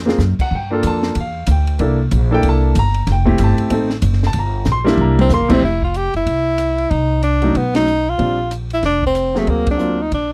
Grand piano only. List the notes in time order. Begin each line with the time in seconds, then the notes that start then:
0.05 A#3 C4 F4 G#4
0.41 F#5
0.55 G5
0.71 A#3 D4 F4 A4
0.87 A5
1.20 F5
1.51 G5
1.79 A#3 D4 E4 A4
2.31 A#3 D4 E4 A4 G5
2.49 A5
2.79 A#5
3.12 G5
3.25 A3 C4 E4 G4
3.44 A5
3.70 A3 C4 D#4 A4
4.27 A5
4.39 A#5
4.72 C6
4.84 G3 A#3 D4 E4
5.01 A#5
5.34 C6
5.48 F2 G3 A3 C4 E4
7.42 F#3 A3 C#4 D#4
7.75 F#3 A3 C#4 D#4
8.18 G3 C4 D4 F4
9.34 F#3 A#3 C4 G#4
9.78 F#3 A#3 C4 F4